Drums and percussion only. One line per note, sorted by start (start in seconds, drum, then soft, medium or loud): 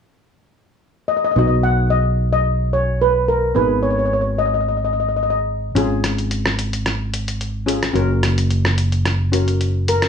5.76 closed hi-hat soft
6.04 cross-stick medium
6.04 closed hi-hat medium
6.18 closed hi-hat medium
6.31 closed hi-hat medium
6.46 cross-stick medium
6.59 closed hi-hat medium
6.73 closed hi-hat medium
6.86 cross-stick medium
6.86 closed hi-hat soft
7.14 closed hi-hat medium
7.28 closed hi-hat medium
7.41 closed hi-hat medium
7.68 closed hi-hat medium
7.83 cross-stick medium
7.83 closed hi-hat medium
7.96 closed hi-hat medium
8.23 cross-stick medium
8.23 closed hi-hat medium
8.38 closed hi-hat medium
8.51 closed hi-hat medium
8.65 cross-stick medium
8.78 closed hi-hat medium
8.92 closed hi-hat soft
9.05 cross-stick medium
9.05 closed hi-hat soft
9.33 closed hi-hat medium
9.48 closed hi-hat medium
9.61 closed hi-hat soft
9.88 closed hi-hat medium
10.02 cross-stick medium
10.02 closed hi-hat medium